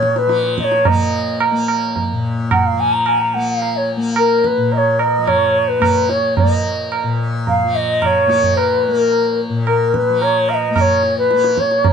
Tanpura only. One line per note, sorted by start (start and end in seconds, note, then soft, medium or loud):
0.00 2.12 A#2 medium
0.00 0.27 F3 medium
0.00 0.88 A#3 medium
0.27 2.73 F3 medium
0.88 1.51 A#3 medium
1.51 3.35 A#3 medium
2.12 4.57 A#2 medium
2.73 5.18 F3 medium
3.35 3.97 A#3 medium
3.97 5.80 A#3 medium
4.57 7.03 A#2 medium
5.18 7.64 F3 medium
5.80 6.42 A#3 medium
6.42 8.27 A#3 medium
7.03 9.49 A#2 medium
7.65 10.09 F3 medium
8.27 8.88 A#3 medium
8.88 10.70 A#3 medium
9.49 11.91 A#2 medium
10.10 11.93 F3 medium
10.70 11.32 A#3 medium
11.32 11.93 A#3 medium